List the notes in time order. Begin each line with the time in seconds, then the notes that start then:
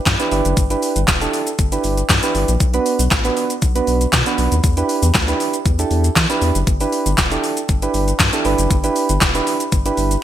0.06 G2, kick, snare, clap, closed hi-hat, shaker
0.19 D4 E4 G4 B4, closed hi-hat, shaker
0.31 G1 D4 E4 G4 B4, open hi-hat, shaker
0.45 F#1, closed hi-hat, shaker
0.57 G1, kick, closed hi-hat, shaker
0.70 D4 E4 G4 B4, closed hi-hat, shaker
0.82 open hi-hat, shaker
0.96 G1, closed hi-hat, shaker
1.08 E1, kick, snare, clap, closed hi-hat, shaker
1.21 D4 E4 G4 A4, closed hi-hat, shaker
1.33 open hi-hat, shaker
1.47 closed hi-hat, shaker
1.59 G1, kick, closed hi-hat, shaker
1.72 D4 E4 G4 B4, closed hi-hat, shaker
1.84 G1, open hi-hat, shaker
1.97 closed hi-hat, shaker
2.09 G2, kick, snare, clap, closed hi-hat, shaker
2.23 D4 E4 G4 B4, closed hi-hat, shaker
2.35 G1, open hi-hat, shaker
2.48 A#1, closed hi-hat, shaker
2.60 B1, kick, closed hi-hat, shaker
2.74 B3 D4 F#4 B4, closed hi-hat, shaker
2.86 open hi-hat, shaker
2.99 B1, closed hi-hat, shaker
3.11 A1, kick, snare, clap, closed hi-hat, shaker
3.24 B3 D4 F#4 B4, closed hi-hat, shaker
3.37 open hi-hat, shaker
3.50 closed hi-hat, shaker
3.62 B1, kick, closed hi-hat, shaker
3.75 B3 D4 F#4 B4, closed hi-hat, shaker
3.87 B1, open hi-hat, shaker
4.01 closed hi-hat, shaker
4.13 B2, kick, snare, clap, closed hi-hat, shaker
4.26 B3 D4 F#4 B4, closed hi-hat, shaker
4.38 B1, open hi-hat, shaker
4.52 D#2, closed hi-hat, shaker
4.64 E2, kick, closed hi-hat, shaker
4.77 D4 E4 G4 B4, closed hi-hat, shaker
4.89 open hi-hat, shaker
5.03 E2, closed hi-hat, shaker
5.14 D2, kick, snare, clap, closed hi-hat, shaker
5.28 D4 E4 G4 B4, closed hi-hat, shaker
5.40 open hi-hat, shaker
5.54 closed hi-hat, shaker
5.66 E2, kick, closed hi-hat, shaker
5.79 D4 E4 G4 A4, closed hi-hat, shaker
5.91 E2, open hi-hat, shaker
6.04 closed hi-hat, shaker
6.16 E3, kick, snare, clap, closed hi-hat, shaker
6.29 D4 E4 G4 B4, closed hi-hat, shaker
6.42 E2, open hi-hat, shaker
6.55 F#1, closed hi-hat, shaker
6.67 G1, kick, closed hi-hat, shaker
6.80 D4 E4 G4 B4, closed hi-hat, shaker
6.92 open hi-hat, shaker
7.06 G1, closed hi-hat, shaker
7.18 E1, kick, snare, clap, closed hi-hat, shaker
7.31 D4 E4 G4 A4, closed hi-hat, shaker
7.44 open hi-hat, shaker
7.57 closed hi-hat, shaker
7.69 G1, kick, closed hi-hat, shaker
7.82 D4 E4 G4 B4, closed hi-hat, shaker
7.94 G1, open hi-hat, shaker
8.08 closed hi-hat, shaker
8.19 G2, kick, snare, clap, closed hi-hat, shaker
8.33 D4 E4 G4 A4, closed hi-hat, shaker
8.45 G1 D4 E4 G4 B4, open hi-hat, shaker
8.58 F#1, closed hi-hat, shaker
8.71 G1, kick, closed hi-hat, shaker
8.84 D4 E4 G4 B4, closed hi-hat, shaker
8.96 open hi-hat, shaker
9.09 G1, closed hi-hat, shaker
9.21 E1, kick, snare, clap, closed hi-hat, shaker
9.35 D4 E4 G4 B4, closed hi-hat, shaker
9.47 open hi-hat, shaker
9.60 closed hi-hat, shaker
9.72 G1, kick, closed hi-hat, shaker
9.85 D4 E4 G4 B4, closed hi-hat, shaker
9.97 G1, open hi-hat, shaker
10.11 closed hi-hat, shaker